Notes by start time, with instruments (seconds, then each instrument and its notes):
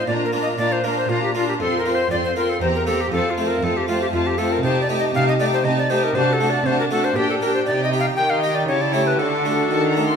0.07 harpsichord A#2, cello section A#2, viola section D4, violin section F4 A#5, recorder D5
0.25 recorder A#4
0.33 harpsichord A#3 D4 F4, viola section D4, violin section F4 A#5
0.42 recorder D#5
0.58 cello section A#2, harpsichord A#2, viola section D4, violin section F4 A#5, recorder D5
0.72 recorder C5
0.83 harpsichord A#3 D4 F4, viola section D4, violin section F4 A#5, recorder A#4
0.98 recorder C5
1.09 cello section A#2, harpsichord A#2, viola section D4, recorder F4, violin section F4 A#5
1.23 recorder G4
1.34 harpsichord A#3 D4 F4, viola section D4, recorder F4, violin section F4 A#5
1.48 recorder G4
1.59 cello section F2, harpsichord F2, viola section C4, violin section F4 C6, recorder A4
1.78 recorder A#4
1.84 viola section C4, harpsichord C4 F4, violin section F4 C6
1.95 recorder C5
2.10 cello section F2, harpsichord F2, viola section C4, violin section F4 C6, recorder D5
2.24 recorder C5
2.36 viola section C4, harpsichord C4 F4, violin section F4 C6, recorder A#4
2.50 recorder A4
2.61 cello section E2, harpsichord E2, viola section C4, violin section G4 A#5, recorder C5
2.75 recorder A#4
2.85 harpsichord A#3 C4 G4, viola section C4, violin section G4 A#5, recorder A4
3.01 recorder G4
3.11 cello section F2, harpsichord F2, viola section C4, violin section F4 A5, recorder A4
3.30 recorder F4
3.37 harpsichord A3 C4 F4, viola section C4, violin section F4 A5
3.47 recorder A#4
3.62 cello section F2, harpsichord F2, viola section C4, violin section F4 A5, recorder A4
3.77 recorder G4
3.88 harpsichord A3 C4 F4, viola section C4, violin section F4 A5, recorder F4
4.02 recorder G4
4.13 cello section F2, harpsichord F2, viola section C4, recorder F4, violin section F4 A5
4.27 recorder G4
4.38 harpsichord A3 C4 F4, viola section C4, violin section F4 A5, recorder A4
4.52 recorder A#4
4.63 harpsichord C3, cello section C3, viola section D#4, violin section G4 A5, recorder C5
4.82 recorder D5
4.88 harpsichord A3 D#4 G4, viola section D#4, violin section G4 A5
4.99 recorder D#5
5.14 cello section C3, harpsichord C3, viola section D#4, violin section G4 A5, recorder F5
5.28 recorder D#5
5.39 harpsichord A3 D#4 G4, viola section D#4, violin section G4 A5, recorder D5
5.53 recorder C5
5.64 cello section C3, harpsichord C3, viola section D#4, violin section G4 A5, recorder D#5
5.78 recorder D5
5.89 harpsichord A3 D#4 G4, viola section D#4, violin section G4 A5, recorder C5
6.03 recorder A#4
6.15 cello section C3, harpsichord C3, viola section D4, violin section F#4 A5, recorder C5
6.33 recorder A4
6.40 harpsichord A3 D4 F#4, viola section D4, violin section F#4 A5
6.50 recorder D5
6.66 cello section C3, harpsichord C3, viola section D4, violin section F#4 A5, recorder C5
6.80 recorder A#4
6.91 harpsichord A3 D4 F#4, viola section D4, violin section F#4 A5, recorder A4
7.04 recorder C5
7.16 cello section A#2, harpsichord A#2, viola section D4, recorder G4, violin section G4 G5
7.30 recorder A4
7.41 viola section D4, harpsichord D4 G4, violin section G4 G5, recorder A#4
7.54 recorder C5
7.66 cello section C3, harpsichord C3, viola section D#4, violin section G4 G5, recorder D5
7.84 recorder D#5
7.93 harpsichord D#4 G4
8.00 recorder F5
8.16 cello section D#3, harpsichord D#3, viola section D#4, violin section G4 G5, recorder G5
8.30 recorder F5
8.42 harpsichord D#4 G4, recorder D#5
8.55 recorder D5
8.67 cello section C#3, harpsichord C#3, viola section E4, violin section G4 A5, recorder C#5
8.81 recorder D5
8.93 harpsichord A3 E4 G4, recorder C#5
9.07 recorder B4
9.19 cello section D3, harpsichord D3, viola section D4, violin section F#4 A5, recorder A4
9.45 harpsichord A3 D4 F#4
9.71 cello section D#3, harpsichord D#3, violin section A5
9.89 violin section A#5
9.97 harpsichord A3 D4 F#4
10.06 violin section C6